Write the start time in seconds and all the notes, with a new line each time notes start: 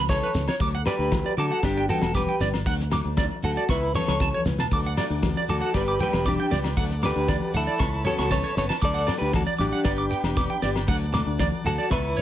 Already playing: C#2
0.08 E3 B3 C#4 A4 C#5, kick, snare, high conga, shekere
0.23 B4
0.34 C#2 E3 B3, snare, muted conga, shekere
0.48 C#5, snare, low agogo
0.60 D2 F#3 A3 D4 D6, kick, muted conga, shekere
0.75 F#5
0.85 F#3 D4 G4 B4 D5, snare, low agogo, shekere
0.98 D2 A3 D4, shekere
1.11 kick, snare, high conga, low agogo, shekere
1.26 D5
1.37 D3 F#3 A3 D4 F#4 A4 D6, snare
1.52 F#5, shekere
1.62 G1 G3 B3 D4 G4, muted clean electric guitar stroke, kick, snare, muted conga, low agogo, shekere
1.78 G5
1.89 G3 B3 D4 F#4 A4 G5, muted conga, high conga, shekere
2.02 E1, snare, low agogo
2.14 G3 B3 D4 G4 B4 D6, kick, snare, high conga, shekere
2.29 G5
2.40 G1 G3 B3 D4 D5, snare, muted conga, shekere
2.54 snare, low agogo
2.65 D2 F#3 A3 D4 F#5, kick, muted conga, shekere
2.80 snare
2.90 F#3 A3 D4 D6, snare, low agogo, shekere
3.04 D2 A3 D4, shekere
3.17 D5, kick, snare, high conga, low agogo, shekere
3.42 D2 F#3 A3 D4 F#4 A4 F#5, shekere
3.57 D5, shekere
3.69 C#2 E3 B3 C#4 E4 B4 C#6, kick, snare, muted conga, low agogo, shekere
3.94 E3 B3 C#4 A4 C#5, muted conga, high conga, shekere
4.07 C#2 C#6, snare, low agogo, shekere
4.19 E3 B3 A5, kick, snare, high conga, shekere
4.24 C#4
4.34 C#5, high conga
4.45 C#2 E3 B3 C#4, snare, low conga, shekere
4.59 A5, snare, low conga, low agogo, shekere
4.71 D2 F#3 A3 D4 F#4 A4 D5 D6, kick, muted conga, shekere
4.86 F#5
4.97 F#3 A3 D4 D5, snare, low agogo, shekere
5.10 D2 A3 D4, shekere
5.23 kick, snare, high conga, low agogo, shekere
5.37 D5
5.48 D2 F#3 A3 D4 F#4 A4 D6, shekere
5.61 F#5, shekere
5.74 G1 G3 B3 D4 G4 B4 D5, kick, snare, low agogo, shekere
5.88 D6
5.99 G3 B3 D4 G4 B4 G5, muted conga, high conga, shekere
6.13 E1, snare, low agogo
6.25 G3 D4 G4 D6, kick, snare, high conga, shekere
6.40 G5
6.50 C#2 G3 B3 D4 D5, snare, muted conga, shekere
6.64 snare, low agogo
6.77 D2 F#3 A3 D4 A4 F#5, kick, muted conga, shekere
6.91 snare
7.01 F#3 A3 D4 D6, snare, low agogo, shekere
7.05 G4 B4
7.15 D2 A3 D4, shekere
7.28 D5, kick, snare, high conga, low agogo, shekere
7.53 D2 F#3 A3 D4 E4 A4 F#5, shekere
7.67 D5, shekere
7.78 C#2 E3 B3 B4 C#5 A5 C#6, muted steel-string acoustic guitar stroke, kick, snare, low agogo, shekere
8.04 E3 B3 C#4 F#4 A4 C#5, muted conga, high conga, shekere
8.18 C#2 C#6, snare, low agogo
8.30 E3 B3 C#4 A4 C#5 A5, kick, snare, high conga, shekere
8.44 C#5
8.57 F#1 B3 C#4 A4 C#5, snare, muted conga, shekere
8.69 A5, snare, low agogo
8.82 D2 F#3 A3 D4 A4 D5 F#5 D6, kick, muted conga, shekere
8.94 F#5
9.07 F#3 A3 D4 D5, snare, low agogo, shekere
9.18 D2 D4 G4 B4, shekere
9.23 A3
9.33 F#4 A4, kick, snare, high conga, low agogo, shekere
9.47 D5
9.58 A1 F#3 D4 G4 D6, muted steel-string acoustic guitar stroke, snare, shekere
9.73 F#5
9.84 G1 B3 D4 G4 D5 G5 B5, kick, snare, muted conga, low agogo, shekere
9.98 D6
10.09 B3 D4 G4 G5, muted conga, shekere
10.23 E1, snare, low agogo
10.35 B3 D4 G4 D6, kick, snare, high conga, shekere
10.50 G5
10.62 G1 B3 D4 G4 D5, snare, muted conga
10.76 snare, low agogo
10.88 D2 F#3 A3 D4 F#5 A5, kick, snare, muted conga, shekere
11.13 F#3 A3 D4 D6, snare, low conga, low agogo, shekere
11.26 D2 A3 D4, shekere
11.39 D5, kick, snare, high conga, low agogo, shekere
11.64 D2 F#3 A3 D4 F#4 A4 F#5, shekere
11.78 D5, shekere
11.90 C#2 E3 B3 C#4 E4 B4 C#5 A5 B5 C#6, kick, snare, muted conga, low conga, low agogo, shekere
12.17 E3 C#5, muted conga, high conga, shekere